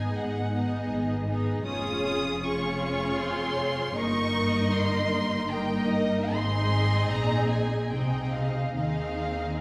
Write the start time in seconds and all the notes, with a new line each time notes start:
Already playing: B3 D#4 G#4 D#5 G#5
0.16 G#1 G#2 F#5
0.53 B3 D#4 G#4 D#5
0.91 G#1 G#2
1.28 B3 D#4 G#4 D#5
1.66 F1 F2 C#4 F4 G#4 C#5 D#6
2.44 C#4 F4 G#4 C#5 C#6
3.20 C4 C6
3.96 G1 G2 A#3 D#4 A#4 D#5 C#6
4.74 C6
5.50 A#3 D#4 A#4 D#5 G5
5.91 D#5
6.33 G#1 G#2 C4 D#4 G#4 D#5 C6
7.12 A#1 A#2 A#5
7.51 G#5
7.92 C2 C3 C4 D#4 G#4 D#5 G5
8.34 F5
8.76 D#2 D#3 C4 D#4 G#4 D#5 F5